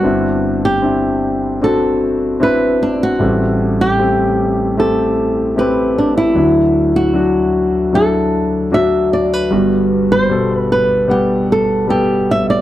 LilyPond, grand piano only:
<<
  \new Staff \with { instrumentName = "Grand piano" } { \time 4/4 \key g \major \tempo 4 = 76 <c' d' e'>4 <c' d' e'>4 <c' d' fis'>4 <c' d' e'>4 | <g a c'>4 <a c' g'>4 <a c' g'>4 <a c' g'>4 | <fis d' e'>4 <fis d' fis'>4 <fis d' e'>4 <fis d' fis'>4 | <g b fis'>4 <b, g a'>4 <g b fis''>4 <g b a'>4 | }
  \new Staff \with { instrumentName = "Grand piano" } { \clef bass \time 4/4 \key g \major <g,, g,>1 | <a,, a,>1 | <d, d>1 | <g,, g,>1 | }
>>